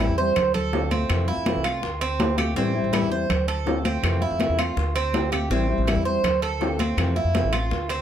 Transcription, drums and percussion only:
0.00 high bongo medium
0.18 high bongo soft
0.18 high conga soft
0.36 high bongo medium
0.36 high conga soft
0.36 low conga medium
0.36 high timbale medium
0.36 claves medium
0.55 high bongo soft
0.55 high conga soft
0.55 low conga medium
0.55 high timbale medium
0.73 high bongo soft
0.73 low bongo medium
0.73 high conga soft
0.73 low timbale medium
0.91 high bongo soft
0.91 high conga medium
0.91 high timbale medium
1.10 high bongo medium
1.10 high conga soft
1.10 high timbale medium
1.10 claves medium
1.28 high conga soft
1.46 high bongo medium
1.46 high conga medium
1.46 high timbale medium
1.46 low timbale medium
1.64 high bongo soft
1.64 high timbale medium
1.64 claves medium
1.83 high bongo medium
1.83 high conga soft
2.01 high bongo soft
2.01 high conga soft
2.01 high timbale medium
2.20 high bongo soft
2.20 low bongo medium
2.20 high conga medium
2.20 high timbale medium
2.20 low timbale medium
2.38 high bongo soft
2.38 high conga medium
2.38 high timbale medium
2.38 claves medium
2.56 high bongo medium
2.56 high conga soft
2.75 high conga soft
2.93 high bongo medium
2.93 high conga medium
2.93 high timbale loud
2.93 low timbale medium
2.93 claves medium
3.11 high bongo soft
3.11 high conga soft
3.30 high bongo medium
3.30 high conga soft
3.30 low conga medium
3.30 high timbale medium
3.30 claves medium
3.48 high bongo soft
3.48 high conga soft
3.48 high timbale medium
3.67 high bongo soft
3.67 low bongo medium
3.67 high conga soft
3.67 low timbale medium
3.85 high bongo soft
3.85 high conga medium
3.85 high timbale medium
4.04 high bongo medium
4.04 high conga soft
4.04 high timbale medium
4.04 claves medium
4.22 high conga soft
4.40 high bongo medium
4.40 high conga medium
4.40 high timbale medium
4.40 low timbale medium
4.59 high bongo soft
4.59 high timbale medium
4.59 claves medium
4.77 high bongo medium
4.77 high conga soft
4.96 high bongo soft
4.96 high conga soft
4.96 high timbale medium
5.14 high bongo soft
5.14 low bongo medium
5.14 high conga medium
5.14 high timbale medium
5.14 low timbale medium
5.32 high bongo soft
5.32 high conga medium
5.32 high timbale medium
5.32 claves medium
5.51 high bongo medium
5.51 high conga soft
5.69 high conga soft
5.88 high bongo medium
5.88 high conga medium
5.88 high timbale loud
5.88 low timbale medium
5.88 claves medium
6.06 high bongo soft
6.06 high conga soft
6.24 high bongo medium
6.24 high conga soft
6.24 low conga medium
6.24 high timbale medium
6.24 claves medium
6.43 high bongo soft
6.43 high conga soft
6.43 high timbale medium
6.61 high bongo soft
6.61 low bongo medium
6.61 high conga soft
6.61 low timbale medium
6.79 high bongo soft
6.79 high conga medium
6.79 high timbale medium
6.98 high bongo medium
6.98 high timbale medium
6.98 claves medium
7.17 high conga soft
7.35 high bongo medium
7.35 high conga medium
7.35 high timbale medium
7.35 low timbale medium
7.53 high bongo soft
7.53 high timbale medium
7.53 claves medium
7.71 high bongo medium
7.71 high conga soft
7.89 high bongo soft
7.89 high conga soft
7.89 high timbale medium

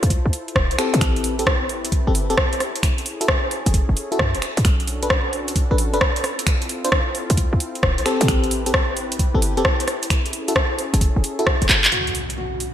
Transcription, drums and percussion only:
0.03 closed hi-hat medium
0.10 kick loud
0.10 closed hi-hat medium
0.33 open hi-hat loud
0.48 closed hi-hat soft
0.56 kick loud
0.56 cross-stick loud
0.71 closed hi-hat soft
0.79 finger snap medium
0.79 open hi-hat medium
0.94 closed hi-hat medium
1.01 finger snap medium
1.01 kick loud
1.01 closed hi-hat medium
1.16 closed hi-hat soft
1.24 open hi-hat loud
1.39 closed hi-hat medium
1.47 kick loud
1.47 cross-stick loud
1.69 open hi-hat medium
1.85 closed hi-hat medium
1.92 kick loud
1.92 closed hi-hat medium
2.15 open hi-hat loud
2.30 closed hi-hat soft
2.38 kick loud
2.38 cross-stick loud
2.53 closed hi-hat soft
2.60 cross-stick medium
2.60 open hi-hat medium
2.76 closed hi-hat medium
2.83 finger snap soft
2.83 kick loud
2.83 closed hi-hat medium
2.98 closed hi-hat soft
3.06 open hi-hat loud
3.21 closed hi-hat medium
3.28 kick loud
3.28 cross-stick loud
3.51 open hi-hat medium
3.66 closed hi-hat medium
3.74 kick loud
3.74 closed hi-hat medium
3.97 open hi-hat loud
4.12 closed hi-hat soft
4.19 kick loud
4.19 cross-stick loud
4.35 closed hi-hat soft
4.42 finger snap soft
4.42 open hi-hat medium
4.57 closed hi-hat medium
4.65 finger snap soft
4.65 kick loud
4.65 closed hi-hat medium
4.80 closed hi-hat soft
4.87 open hi-hat loud
5.03 closed hi-hat medium
5.10 kick loud
5.10 cross-stick loud
5.33 open hi-hat medium
5.48 closed hi-hat medium
5.56 kick loud
5.56 closed hi-hat medium
5.78 open hi-hat loud
5.94 closed hi-hat soft
6.01 kick loud
6.01 cross-stick loud
6.16 closed hi-hat medium
6.24 cross-stick medium
6.24 open hi-hat medium
6.39 closed hi-hat medium
6.47 finger snap soft
6.47 kick loud
6.47 closed hi-hat medium
6.62 closed hi-hat soft
6.69 open hi-hat loud
6.85 closed hi-hat medium
6.92 kick loud
6.92 cross-stick loud
7.15 open hi-hat medium
7.30 closed hi-hat medium
7.37 kick loud
7.37 closed hi-hat medium
7.60 open hi-hat loud
7.75 closed hi-hat soft
7.83 kick loud
7.83 cross-stick loud
7.98 closed hi-hat medium
8.06 finger snap soft
8.06 open hi-hat medium
8.21 closed hi-hat medium
8.28 finger snap medium
8.28 kick loud
8.28 closed hi-hat medium
8.44 closed hi-hat soft
8.51 open hi-hat loud
8.66 closed hi-hat medium
8.74 kick loud
8.74 cross-stick loud
8.97 open hi-hat medium
9.12 closed hi-hat medium
9.19 kick loud
9.19 closed hi-hat medium
9.42 open hi-hat loud
9.57 closed hi-hat soft
9.65 kick loud
9.65 cross-stick loud
9.80 closed hi-hat medium
9.88 cross-stick medium
9.88 open hi-hat medium
10.03 closed hi-hat medium
10.10 finger snap medium
10.10 kick loud
10.10 closed hi-hat medium
10.26 closed hi-hat soft
10.33 open hi-hat loud
10.48 closed hi-hat medium
10.56 kick loud
10.56 cross-stick loud
10.79 open hi-hat medium
10.94 closed hi-hat medium
11.01 kick loud
11.01 closed hi-hat medium
11.24 open hi-hat loud
11.39 closed hi-hat soft
11.47 kick loud
11.47 cross-stick loud
11.62 closed hi-hat medium
11.69 clap medium
11.69 open hi-hat medium
11.84 clap loud
11.84 closed hi-hat medium
11.92 closed hi-hat medium
12.07 closed hi-hat soft
12.15 open hi-hat loud
12.30 closed hi-hat medium
12.60 open hi-hat medium

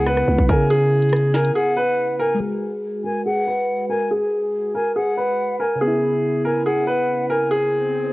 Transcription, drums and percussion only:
0.06 cross-stick loud
0.17 cross-stick medium
0.38 kick loud
0.49 kick loud
0.49 closed hi-hat medium
0.70 closed hi-hat medium
1.02 closed hi-hat soft
1.09 cross-stick loud
1.09 closed hi-hat medium
1.16 closed hi-hat medium
1.34 snare medium
1.45 closed hi-hat medium

